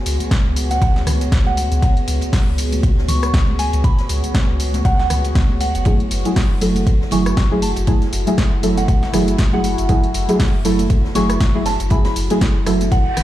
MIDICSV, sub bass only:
0, 0, Header, 1, 2, 480
1, 0, Start_track
1, 0, Key_signature, 3, "minor"
1, 0, Tempo, 504202
1, 1737, Time_signature, 4, 2, 24, 8
1, 12595, End_track
2, 0, Start_track
2, 0, Title_t, "Sub bass"
2, 0, Program_c, 0, 38
2, 57, Note_on_c, 0, 37, 92
2, 171, Note_off_c, 0, 37, 0
2, 434, Note_on_c, 0, 37, 88
2, 750, Note_off_c, 0, 37, 0
2, 777, Note_on_c, 0, 37, 86
2, 983, Note_off_c, 0, 37, 0
2, 1017, Note_on_c, 0, 37, 89
2, 1223, Note_off_c, 0, 37, 0
2, 1257, Note_on_c, 0, 37, 78
2, 1598, Note_off_c, 0, 37, 0
2, 1634, Note_on_c, 0, 37, 84
2, 1720, Note_off_c, 0, 37, 0
2, 1977, Note_on_c, 0, 37, 102
2, 2092, Note_off_c, 0, 37, 0
2, 2354, Note_on_c, 0, 37, 90
2, 2670, Note_off_c, 0, 37, 0
2, 2697, Note_on_c, 0, 37, 89
2, 2903, Note_off_c, 0, 37, 0
2, 2937, Note_on_c, 0, 37, 93
2, 3144, Note_off_c, 0, 37, 0
2, 3177, Note_on_c, 0, 37, 80
2, 3518, Note_off_c, 0, 37, 0
2, 3554, Note_on_c, 0, 37, 80
2, 3640, Note_off_c, 0, 37, 0
2, 3897, Note_on_c, 0, 37, 99
2, 4011, Note_off_c, 0, 37, 0
2, 4274, Note_on_c, 0, 37, 89
2, 4590, Note_off_c, 0, 37, 0
2, 4617, Note_on_c, 0, 37, 88
2, 4823, Note_off_c, 0, 37, 0
2, 4857, Note_on_c, 0, 37, 87
2, 5063, Note_off_c, 0, 37, 0
2, 5097, Note_on_c, 0, 37, 78
2, 5438, Note_off_c, 0, 37, 0
2, 5473, Note_on_c, 0, 30, 77
2, 5790, Note_off_c, 0, 30, 0
2, 5817, Note_on_c, 0, 30, 101
2, 5931, Note_off_c, 0, 30, 0
2, 6193, Note_on_c, 0, 30, 85
2, 6510, Note_off_c, 0, 30, 0
2, 6537, Note_on_c, 0, 30, 85
2, 6743, Note_off_c, 0, 30, 0
2, 6777, Note_on_c, 0, 30, 95
2, 6983, Note_off_c, 0, 30, 0
2, 7017, Note_on_c, 0, 30, 79
2, 7358, Note_off_c, 0, 30, 0
2, 7394, Note_on_c, 0, 30, 81
2, 7480, Note_off_c, 0, 30, 0
2, 7737, Note_on_c, 0, 30, 101
2, 7851, Note_off_c, 0, 30, 0
2, 8114, Note_on_c, 0, 30, 84
2, 8430, Note_off_c, 0, 30, 0
2, 8457, Note_on_c, 0, 30, 88
2, 8663, Note_off_c, 0, 30, 0
2, 8697, Note_on_c, 0, 30, 89
2, 8903, Note_off_c, 0, 30, 0
2, 8937, Note_on_c, 0, 30, 79
2, 9278, Note_off_c, 0, 30, 0
2, 9314, Note_on_c, 0, 30, 84
2, 9400, Note_off_c, 0, 30, 0
2, 9657, Note_on_c, 0, 30, 96
2, 9771, Note_off_c, 0, 30, 0
2, 10034, Note_on_c, 0, 30, 93
2, 10350, Note_off_c, 0, 30, 0
2, 10377, Note_on_c, 0, 30, 86
2, 10583, Note_off_c, 0, 30, 0
2, 10617, Note_on_c, 0, 30, 91
2, 10823, Note_off_c, 0, 30, 0
2, 10857, Note_on_c, 0, 30, 77
2, 11198, Note_off_c, 0, 30, 0
2, 11234, Note_on_c, 0, 30, 81
2, 11320, Note_off_c, 0, 30, 0
2, 11577, Note_on_c, 0, 30, 102
2, 11692, Note_off_c, 0, 30, 0
2, 11954, Note_on_c, 0, 30, 89
2, 12270, Note_off_c, 0, 30, 0
2, 12297, Note_on_c, 0, 30, 88
2, 12503, Note_off_c, 0, 30, 0
2, 12537, Note_on_c, 0, 30, 91
2, 12595, Note_off_c, 0, 30, 0
2, 12595, End_track
0, 0, End_of_file